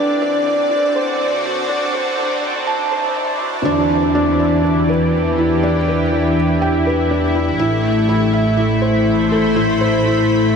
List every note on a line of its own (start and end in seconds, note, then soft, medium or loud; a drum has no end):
0.00 3.66 D3 medium
0.00 1.06 E4 medium
0.00 9.17 D5 medium
0.00 riser medium
0.05 3.66 C4 medium
0.22 0.45 D4 medium
0.46 0.70 D5 medium
0.71 0.94 D4 medium
0.84 3.66 F#4 medium
0.96 1.19 C5 medium
1.45 1.68 F#4 medium
1.69 1.83 D4 loud
1.94 2.08 C5 medium
2.18 2.42 D4 medium
2.67 2.91 A5 medium
2.67 swell medium
2.91 3.15 C5 medium
3.16 3.30 D4 medium
3.40 3.64 F#4 medium
3.65 7.56 E2 medium
3.65 7.59 E3 medium
3.65 3.79 D4 loud
4.00 10.56 E4 loud
4.15 4.38 D4 loud
4.40 4.63 D5 medium
4.56 9.16 G4 medium
4.64 4.88 D4 medium
4.89 5.12 B4 medium
5.38 5.61 E4 medium
5.63 5.77 D4 loud
5.88 6.01 B4 medium
6.12 6.35 D4 medium
6.62 6.85 G5 medium
6.86 7.09 B4 medium
7.11 7.24 D4 medium
7.35 7.58 E4 medium
7.59 10.56 A1 loud
7.59 10.56 A3 medium
7.59 7.73 E4 loud
8.09 8.32 E4 medium
8.33 8.56 E5 medium
8.57 8.81 E4 medium
8.57 10.56 B5 medium
8.82 9.05 C5 medium
8.98 10.56 C5 medium
9.32 9.55 A4 medium
9.56 9.70 E4 loud
9.81 9.95 C5 medium
10.05 10.28 E4 medium